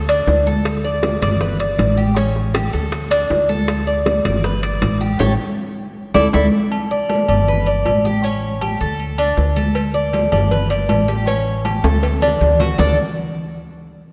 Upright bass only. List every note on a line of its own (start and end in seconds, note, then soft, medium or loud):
0.00 0.24 D2 medium
0.27 1.16 D2 medium
1.22 1.75 G1 medium
1.78 2.67 A1 medium
2.73 3.26 D2 medium
3.30 4.19 D2 medium
4.25 4.78 G1 medium
4.82 5.17 A1 medium
5.20 5.34 A1 loud
6.15 6.29 D2 medium
6.34 6.48 D2 medium
7.29 7.81 G1 medium
7.86 8.75 A1 medium
8.81 9.34 D2 loud
9.37 10.26 D2 loud
10.32 10.85 G1 medium
10.89 11.78 A1 loud
11.83 12.37 D2 medium
12.41 12.74 D2 medium
12.79 12.97 D2 medium